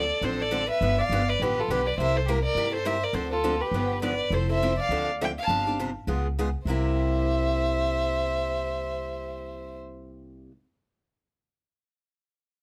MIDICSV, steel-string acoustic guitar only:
0, 0, Header, 1, 2, 480
1, 0, Start_track
1, 0, Tempo, 292540
1, 1326, Time_signature, 4, 2, 24, 8
1, 20720, End_track
2, 0, Start_track
2, 0, Title_t, "Steel-string acoustic guitar"
2, 0, Program_c, 0, 25
2, 363, Note_on_c, 0, 50, 68
2, 370, Note_on_c, 0, 62, 73
2, 371, Note_on_c, 0, 60, 67
2, 376, Note_on_c, 0, 53, 66
2, 384, Note_on_c, 0, 69, 67
2, 679, Note_off_c, 0, 50, 0
2, 682, Note_off_c, 0, 62, 0
2, 683, Note_off_c, 0, 60, 0
2, 686, Note_off_c, 0, 53, 0
2, 689, Note_off_c, 0, 69, 0
2, 837, Note_on_c, 0, 53, 81
2, 839, Note_on_c, 0, 50, 85
2, 847, Note_on_c, 0, 60, 87
2, 855, Note_on_c, 0, 69, 95
2, 856, Note_on_c, 0, 62, 93
2, 1015, Note_off_c, 0, 53, 0
2, 1016, Note_off_c, 0, 50, 0
2, 1020, Note_off_c, 0, 60, 0
2, 1024, Note_off_c, 0, 69, 0
2, 1025, Note_off_c, 0, 62, 0
2, 1338, Note_on_c, 0, 50, 65
2, 1345, Note_on_c, 0, 53, 70
2, 1353, Note_on_c, 0, 59, 73
2, 1354, Note_on_c, 0, 62, 73
2, 1359, Note_on_c, 0, 67, 67
2, 1645, Note_off_c, 0, 50, 0
2, 1649, Note_off_c, 0, 53, 0
2, 1653, Note_off_c, 0, 59, 0
2, 1654, Note_off_c, 0, 62, 0
2, 1656, Note_off_c, 0, 67, 0
2, 1841, Note_on_c, 0, 50, 91
2, 1846, Note_on_c, 0, 59, 89
2, 1848, Note_on_c, 0, 53, 81
2, 1850, Note_on_c, 0, 62, 83
2, 1850, Note_on_c, 0, 67, 91
2, 1996, Note_off_c, 0, 50, 0
2, 1999, Note_off_c, 0, 59, 0
2, 2000, Note_off_c, 0, 53, 0
2, 2001, Note_off_c, 0, 62, 0
2, 2001, Note_off_c, 0, 67, 0
2, 2332, Note_on_c, 0, 50, 70
2, 2332, Note_on_c, 0, 59, 67
2, 2338, Note_on_c, 0, 62, 72
2, 2341, Note_on_c, 0, 53, 65
2, 2354, Note_on_c, 0, 67, 79
2, 2622, Note_off_c, 0, 50, 0
2, 2622, Note_off_c, 0, 59, 0
2, 2625, Note_off_c, 0, 62, 0
2, 2626, Note_off_c, 0, 53, 0
2, 2633, Note_off_c, 0, 67, 0
2, 2797, Note_on_c, 0, 50, 77
2, 2799, Note_on_c, 0, 59, 82
2, 2803, Note_on_c, 0, 53, 82
2, 2805, Note_on_c, 0, 62, 92
2, 2810, Note_on_c, 0, 67, 92
2, 2953, Note_off_c, 0, 50, 0
2, 2955, Note_off_c, 0, 59, 0
2, 2956, Note_off_c, 0, 53, 0
2, 2957, Note_off_c, 0, 62, 0
2, 2960, Note_off_c, 0, 67, 0
2, 3282, Note_on_c, 0, 48, 65
2, 3282, Note_on_c, 0, 55, 67
2, 3288, Note_on_c, 0, 58, 73
2, 3291, Note_on_c, 0, 64, 68
2, 3301, Note_on_c, 0, 67, 71
2, 3576, Note_off_c, 0, 48, 0
2, 3576, Note_off_c, 0, 55, 0
2, 3579, Note_off_c, 0, 58, 0
2, 3581, Note_off_c, 0, 64, 0
2, 3586, Note_off_c, 0, 67, 0
2, 3745, Note_on_c, 0, 48, 85
2, 3747, Note_on_c, 0, 55, 93
2, 3751, Note_on_c, 0, 64, 88
2, 3753, Note_on_c, 0, 58, 89
2, 3755, Note_on_c, 0, 67, 96
2, 3907, Note_off_c, 0, 48, 0
2, 3908, Note_off_c, 0, 55, 0
2, 3910, Note_off_c, 0, 58, 0
2, 3910, Note_off_c, 0, 64, 0
2, 3911, Note_off_c, 0, 67, 0
2, 4216, Note_on_c, 0, 48, 64
2, 4222, Note_on_c, 0, 67, 73
2, 4225, Note_on_c, 0, 55, 67
2, 4226, Note_on_c, 0, 58, 69
2, 4231, Note_on_c, 0, 64, 71
2, 4522, Note_off_c, 0, 48, 0
2, 4525, Note_off_c, 0, 67, 0
2, 4527, Note_off_c, 0, 55, 0
2, 4527, Note_off_c, 0, 58, 0
2, 4529, Note_off_c, 0, 64, 0
2, 4680, Note_on_c, 0, 48, 79
2, 4683, Note_on_c, 0, 58, 89
2, 4691, Note_on_c, 0, 55, 94
2, 4692, Note_on_c, 0, 64, 91
2, 4701, Note_on_c, 0, 67, 100
2, 4853, Note_off_c, 0, 48, 0
2, 4855, Note_off_c, 0, 58, 0
2, 4859, Note_off_c, 0, 55, 0
2, 4859, Note_off_c, 0, 64, 0
2, 4864, Note_off_c, 0, 67, 0
2, 5140, Note_on_c, 0, 50, 66
2, 5144, Note_on_c, 0, 60, 72
2, 5147, Note_on_c, 0, 53, 65
2, 5157, Note_on_c, 0, 62, 73
2, 5161, Note_on_c, 0, 69, 67
2, 5463, Note_off_c, 0, 50, 0
2, 5465, Note_off_c, 0, 60, 0
2, 5467, Note_off_c, 0, 53, 0
2, 5472, Note_off_c, 0, 62, 0
2, 5474, Note_off_c, 0, 69, 0
2, 5639, Note_on_c, 0, 50, 77
2, 5645, Note_on_c, 0, 53, 84
2, 5652, Note_on_c, 0, 60, 85
2, 5653, Note_on_c, 0, 62, 78
2, 5655, Note_on_c, 0, 69, 88
2, 5812, Note_off_c, 0, 50, 0
2, 5815, Note_off_c, 0, 53, 0
2, 5819, Note_off_c, 0, 60, 0
2, 5819, Note_off_c, 0, 62, 0
2, 5820, Note_off_c, 0, 69, 0
2, 6138, Note_on_c, 0, 50, 63
2, 6141, Note_on_c, 0, 53, 67
2, 6142, Note_on_c, 0, 62, 71
2, 6143, Note_on_c, 0, 59, 68
2, 6146, Note_on_c, 0, 67, 72
2, 6442, Note_off_c, 0, 50, 0
2, 6443, Note_off_c, 0, 53, 0
2, 6444, Note_off_c, 0, 59, 0
2, 6444, Note_off_c, 0, 62, 0
2, 6446, Note_off_c, 0, 67, 0
2, 6598, Note_on_c, 0, 53, 86
2, 6600, Note_on_c, 0, 50, 84
2, 6609, Note_on_c, 0, 59, 92
2, 6611, Note_on_c, 0, 62, 95
2, 6611, Note_on_c, 0, 67, 90
2, 6771, Note_off_c, 0, 53, 0
2, 6772, Note_off_c, 0, 50, 0
2, 6776, Note_off_c, 0, 59, 0
2, 6777, Note_off_c, 0, 62, 0
2, 6777, Note_off_c, 0, 67, 0
2, 7084, Note_on_c, 0, 53, 61
2, 7093, Note_on_c, 0, 64, 71
2, 7094, Note_on_c, 0, 60, 62
2, 7096, Note_on_c, 0, 69, 69
2, 7351, Note_off_c, 0, 53, 0
2, 7355, Note_off_c, 0, 64, 0
2, 7356, Note_off_c, 0, 60, 0
2, 7357, Note_off_c, 0, 69, 0
2, 7376, Note_on_c, 0, 69, 54
2, 7390, Note_on_c, 0, 64, 49
2, 7412, Note_on_c, 0, 60, 42
2, 7557, Note_off_c, 0, 69, 0
2, 7564, Note_off_c, 0, 64, 0
2, 7575, Note_off_c, 0, 60, 0
2, 7589, Note_on_c, 0, 53, 76
2, 7592, Note_on_c, 0, 60, 79
2, 7594, Note_on_c, 0, 64, 93
2, 7600, Note_on_c, 0, 69, 89
2, 7746, Note_off_c, 0, 53, 0
2, 7747, Note_off_c, 0, 60, 0
2, 7748, Note_off_c, 0, 64, 0
2, 7751, Note_off_c, 0, 69, 0
2, 8055, Note_on_c, 0, 50, 65
2, 8055, Note_on_c, 0, 53, 61
2, 8063, Note_on_c, 0, 62, 73
2, 8066, Note_on_c, 0, 60, 70
2, 8068, Note_on_c, 0, 69, 72
2, 8359, Note_off_c, 0, 50, 0
2, 8360, Note_off_c, 0, 53, 0
2, 8363, Note_off_c, 0, 62, 0
2, 8365, Note_off_c, 0, 60, 0
2, 8366, Note_off_c, 0, 69, 0
2, 8555, Note_on_c, 0, 50, 86
2, 8558, Note_on_c, 0, 69, 96
2, 8559, Note_on_c, 0, 60, 82
2, 8560, Note_on_c, 0, 62, 93
2, 8561, Note_on_c, 0, 53, 87
2, 8709, Note_off_c, 0, 50, 0
2, 8710, Note_off_c, 0, 69, 0
2, 8711, Note_off_c, 0, 60, 0
2, 8711, Note_off_c, 0, 62, 0
2, 8712, Note_off_c, 0, 53, 0
2, 9010, Note_on_c, 0, 48, 62
2, 9014, Note_on_c, 0, 53, 62
2, 9017, Note_on_c, 0, 62, 71
2, 9028, Note_on_c, 0, 60, 72
2, 9031, Note_on_c, 0, 67, 71
2, 9274, Note_off_c, 0, 48, 0
2, 9276, Note_off_c, 0, 53, 0
2, 9277, Note_off_c, 0, 62, 0
2, 9283, Note_off_c, 0, 60, 0
2, 9284, Note_off_c, 0, 67, 0
2, 9304, Note_on_c, 0, 67, 52
2, 9318, Note_on_c, 0, 62, 49
2, 9329, Note_on_c, 0, 60, 47
2, 9480, Note_off_c, 0, 67, 0
2, 9487, Note_off_c, 0, 62, 0
2, 9493, Note_off_c, 0, 60, 0
2, 9506, Note_on_c, 0, 48, 78
2, 9510, Note_on_c, 0, 53, 86
2, 9515, Note_on_c, 0, 62, 85
2, 9519, Note_on_c, 0, 60, 84
2, 9520, Note_on_c, 0, 67, 90
2, 9664, Note_off_c, 0, 48, 0
2, 9666, Note_off_c, 0, 53, 0
2, 9669, Note_off_c, 0, 62, 0
2, 9671, Note_off_c, 0, 60, 0
2, 9671, Note_off_c, 0, 67, 0
2, 9965, Note_on_c, 0, 49, 67
2, 9977, Note_on_c, 0, 56, 69
2, 9977, Note_on_c, 0, 59, 69
2, 9979, Note_on_c, 0, 65, 76
2, 9988, Note_on_c, 0, 68, 65
2, 10275, Note_off_c, 0, 49, 0
2, 10280, Note_off_c, 0, 59, 0
2, 10281, Note_off_c, 0, 56, 0
2, 10281, Note_off_c, 0, 65, 0
2, 10286, Note_off_c, 0, 68, 0
2, 10478, Note_on_c, 0, 56, 81
2, 10479, Note_on_c, 0, 49, 76
2, 10487, Note_on_c, 0, 65, 86
2, 10489, Note_on_c, 0, 59, 89
2, 10490, Note_on_c, 0, 68, 93
2, 10630, Note_off_c, 0, 56, 0
2, 10631, Note_off_c, 0, 49, 0
2, 10635, Note_off_c, 0, 65, 0
2, 10636, Note_off_c, 0, 59, 0
2, 10636, Note_off_c, 0, 68, 0
2, 10945, Note_on_c, 0, 48, 76
2, 10964, Note_on_c, 0, 55, 71
2, 10974, Note_on_c, 0, 58, 84
2, 10985, Note_on_c, 0, 64, 81
2, 10995, Note_on_c, 0, 67, 89
2, 17236, Note_off_c, 0, 48, 0
2, 17245, Note_off_c, 0, 55, 0
2, 17250, Note_off_c, 0, 58, 0
2, 17256, Note_off_c, 0, 64, 0
2, 17261, Note_off_c, 0, 67, 0
2, 20720, End_track
0, 0, End_of_file